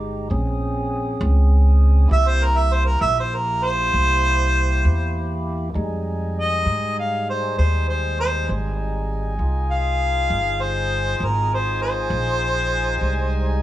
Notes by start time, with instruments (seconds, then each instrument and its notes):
Already playing: upright bass G1, tonewheel organ G#3 D#4 G4
0.30 upright bass A#1, tonewheel organ C4 C#4 G#4
1.21 upright bass C#2
2.08 upright bass C2, tonewheel organ A#3 E4 G4
2.12 harmonica E5
2.28 harmonica C5
2.44 harmonica A#4
2.57 harmonica E5
2.73 harmonica C5
2.86 harmonica A#4
3.01 upright bass A#1, harmonica E5
3.20 harmonica C5
3.35 harmonica A#4
3.64 harmonica C5
3.94 upright bass C2
4.85 upright bass E2
5.75 upright bass F2, tonewheel organ G3 G#3 D#4, horn section D#5 G5 G#5
6.39 harmonica D#5
6.66 upright bass G#2
6.99 harmonica F5
7.29 harmonica C5
7.58 upright bass D#2, harmonica C5
7.89 harmonica C5
8.20 harmonica C5
8.49 upright bass G#1
9.39 upright bass C2, tonewheel organ D#4 F4 G#4
9.71 harmonica F5
10.30 upright bass G1
10.62 harmonica C5
11.20 upright bass G#1, harmonica A#4
11.54 harmonica C5
11.82 harmonica C5
12.10 upright bass A#1
12.98 upright bass C2, tonewheel organ G3 G#3 D#4